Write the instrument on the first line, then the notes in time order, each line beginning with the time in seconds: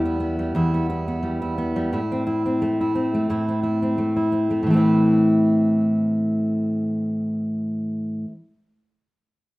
steel-string acoustic guitar
Already playing: E2 G3 B3
0.05 E4
0.20 B3
0.39 G3
0.55 E2 E4
0.74 B3
0.90 E4
1.08 B3
1.23 G3
1.42 E4
1.58 B3
1.76 G3
1.93 A2 E4
2.12 C4
2.27 E4
2.46 C4
2.62 A3
2.81 E4
2.95 C4
3.14 A3
3.30 A2 E4
3.48 C4
3.63 E4
3.82 C4
3.98 A3
4.16 E4
4.32 C4
4.51 A3
4.63 A2 E3
4.70 A3 C4
4.77 E4